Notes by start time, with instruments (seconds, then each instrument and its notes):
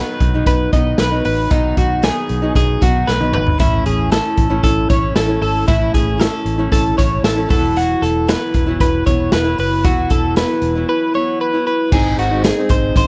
Already playing: steel-string acoustic guitar D#3 F#3 B3 D#4, clean electric guitar B4
0.20 fingered electric bass B1, kick, closed hi-hat
0.34 steel-string acoustic guitar B2 D#3 F#3 B3 D#4
0.46 fingered electric bass B1, clean electric guitar B4, kick, closed hi-hat
0.73 fingered electric bass B1, steel-string acoustic guitar D#3 F#3 B3 D#4, clean electric guitar D#5, kick, closed hi-hat
0.98 fingered electric bass B1, clean electric guitar B4, snare, closed hi-hat
1.11 steel-string acoustic guitar F#3 B3 D#4
1.25 fingered electric bass A1, clean electric guitar B4, open hi-hat
1.50 fingered electric bass B1, steel-string acoustic guitar B2 D#3 F#3 B3 D#4, clean electric guitar D#4, kick, closed hi-hat
1.77 fingered electric bass B1, clean electric guitar F#4, kick, closed hi-hat
2.02 steel-string acoustic guitar D#3 F#3 B3 D#4, clean electric guitar G#4, snare, closed hi-hat
2.29 fingered electric bass B1, closed hi-hat
2.42 steel-string acoustic guitar B2 D#3 F#3 B3 D#4
2.55 fingered electric bass B1, clean electric guitar G#4, kick, closed hi-hat
2.81 fingered electric bass B1, steel-string acoustic guitar D#3 F#3 B3 D#4, clean electric guitar F#4, kick, closed hi-hat
3.07 fingered electric bass B1, clean electric guitar B4, snare
3.20 steel-string acoustic guitar F#3 B3 D#4, high tom
3.33 fingered electric bass G#1, clean electric guitar B4, mid tom
3.47 floor tom
3.58 fingered electric bass A1, steel-string acoustic guitar A2 E3 A3 C#4 E4, clean electric guitar E4, kick, closed hi-hat
3.86 fingered electric bass A1, clean electric guitar G#4, closed hi-hat
4.10 steel-string acoustic guitar E3 A3 C#4 E4, clean electric guitar A4, snare, closed hi-hat
4.37 fingered electric bass A1, kick, closed hi-hat
4.49 steel-string acoustic guitar A2 E3 A3 C#4 E4
4.63 fingered electric bass A1, clean electric guitar A4, kick, closed hi-hat
4.89 fingered electric bass A1, steel-string acoustic guitar E3 A3 C#4 E4, clean electric guitar C#5, kick, closed hi-hat
5.16 fingered electric bass A1, clean electric guitar A4, snare, closed hi-hat
5.27 steel-string acoustic guitar A3 C#4 E4
5.41 fingered electric bass G#1, clean electric guitar A4, open hi-hat
5.67 fingered electric bass A1, steel-string acoustic guitar A2 E3 A3 C#4 E4, clean electric guitar E4, kick, closed hi-hat
5.94 fingered electric bass A1, clean electric guitar G#4, kick, closed hi-hat
6.18 steel-string acoustic guitar E3 A3 C#4 E4, clean electric guitar A4, snare, closed hi-hat
6.45 fingered electric bass A1, closed hi-hat
6.58 steel-string acoustic guitar A2 E3 A3 C#4 E4
6.72 fingered electric bass A1, clean electric guitar A4, kick, closed hi-hat
6.97 fingered electric bass A1, steel-string acoustic guitar E3 A3 C#4 E4, clean electric guitar C#5, kick, closed hi-hat
7.23 fingered electric bass A1, clean electric guitar A4, snare, closed hi-hat
7.36 steel-string acoustic guitar A3 C#4 E4
7.48 fingered electric bass E1, steel-string acoustic guitar E3 F#3 B3 E4, clean electric guitar A4, kick, open hi-hat
7.76 clean electric guitar F#4, closed hi-hat
8.02 fingered electric bass E1, clean electric guitar A4, closed hi-hat
8.27 steel-string acoustic guitar E3 F#3 B3 E4, clean electric guitar B4, snare, closed hi-hat
8.54 fingered electric bass E1, kick, closed hi-hat
8.66 steel-string acoustic guitar E3 F#3 B3 E4
8.80 fingered electric bass E1, clean electric guitar B4, kick, closed hi-hat
9.05 fingered electric bass E1, steel-string acoustic guitar E3 F#3 B3 E4, clean electric guitar C#5, kick, closed hi-hat
9.32 fingered electric bass E1, clean electric guitar B4, snare, closed hi-hat
9.44 steel-string acoustic guitar F#3 B3 E4
9.58 fingered electric bass F#1, clean electric guitar B4, open hi-hat
9.84 fingered electric bass E1, steel-string acoustic guitar E3 F#3 B3 E4, clean electric guitar F#4, kick, closed hi-hat
10.10 fingered electric bass E1, clean electric guitar A4, kick, closed hi-hat
10.36 steel-string acoustic guitar E3 F#3 B3 E4, clean electric guitar B4, snare, closed hi-hat
10.62 fingered electric bass E1, closed hi-hat
10.75 steel-string acoustic guitar E3 F#3 B3 E4
10.89 clean electric guitar B4
11.14 steel-string acoustic guitar E3 F#3 B3 E4, clean electric guitar C#5
11.41 clean electric guitar B4
11.53 steel-string acoustic guitar F#3 B3 E4
11.67 clean electric guitar B4
11.92 fingered electric bass G#1, steel-string acoustic guitar G#2 D#3 G#3 C4 D#4, upright piano D#4 G#4 C5, clean electric guitar G#4, kick, crash
12.17 fingered electric bass G#1, clean electric guitar F#4, closed hi-hat
12.31 steel-string acoustic guitar G#3 C4 D#4
12.44 clean electric guitar G#4, snare, closed hi-hat
12.57 steel-string acoustic guitar G#3 C4 D#4
12.69 fingered electric bass G#1, clean electric guitar C5, kick, closed hi-hat
12.96 fingered electric bass G#1, clean electric guitar C5, kick, closed hi-hat